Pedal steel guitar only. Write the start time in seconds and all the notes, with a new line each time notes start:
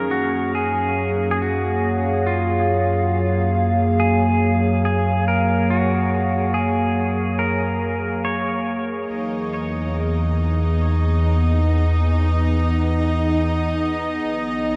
Already playing: A#4
0.11 F#4
0.55 G#4
1.31 G#4
1.42 F#4
2.27 F4
4.00 G#4
4.85 G#4
5.28 A#4
5.70 F#4
6.54 G#4
7.39 A#4
8.25 C#5